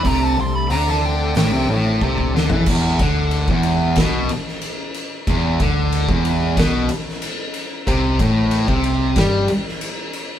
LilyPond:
<<
  \new Staff \with { instrumentName = "Lead electric guitar" } { \time 4/4 \key e \minor \tempo 4 = 92 ais''16 a''16 c'''16 b''16 ais''16 a''16 g''8 g''8 r4. | r1 | r1 | r1 | }
  \new Staff \with { instrumentName = "Tonewheel organ" } { \time 4/4 \key e \minor <c a d'>1 | r1 | r1 | r1 | }
  \new Staff \with { instrumentName = "Distorted electric guitar" } { \clef bass \time 4/4 \key e \minor c8 c8 d4 a,16 c16 a,8 c8 d16 e16 | e,8 d8. e,8. b,8 r4. | e,8 d8. e,8. b,8 r4. | c8 a,8. c8. g8 r4. | }
  \new Staff \with { instrumentName = "Picked electric bass" } { \clef bass \time 4/4 \key e \minor c,8 c,8 d,4 a,,16 c,16 a,,8 c,8 d,16 e,16 | e,,8 d,8. e,,8. b,,8 r4. | e,,8 d,8. e,,8. b,,8 r4. | c,8 a,,8. c,8. g,8 r4. | }
  \new DrumStaff \with { instrumentName = "Drums" } \drummode { \time 4/4 <hho bd>4 hho16 sn8. <hho sn>4 bd16 bd16 sn16 tomfh16 | <cymc bd>8 <bd cymr>8 cymr16 bd16 cymr8 <bd cymr sn>8 cymr16 sn16 cymr8 cymr8 | <bd cymr>8 <bd cymr>8 cymr16 bd16 cymr8 <bd cymr sn>8 cymr16 sn16 cymr8 cymr8 | <bd cymr>8 <bd cymr>8 cymr16 bd16 cymr8 <bd cymr sn>8 cymr16 sn16 cymr8 cymr8 | }
>>